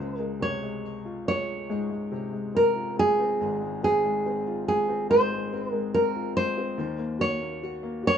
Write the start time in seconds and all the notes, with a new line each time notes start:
Already playing: C#3 C5
0.00 C#2
0.19 G#3 A#4
0.40 C3 C#5
0.63 G#3
1.05 F4
1.28 G#3 C#5
1.70 G#2 G#3
1.91 G#3
2.11 C3
2.33 G#3
2.55 C4 A#4
2.76 F4
2.97 G#3 G#4
3.19 C4
3.41 G#1 G#2
3.62 G#3
3.83 C4 G#4
4.05 G#3
4.26 C4
4.47 F4
4.67 G#3 G#4
4.89 C4
5.10 G#2 G#3 C5
5.31 G#3
5.53 C4
5.73 G#3 A#4
5.94 C4 A#4
6.16 F4
6.36 G#3 C5
6.58 C4
6.78 D#2 D#3
6.99 A#3
7.19 F#4 C#5
7.41 A#3
7.63 F#4
7.83 A#3
8.03 F#4
8.07 C#5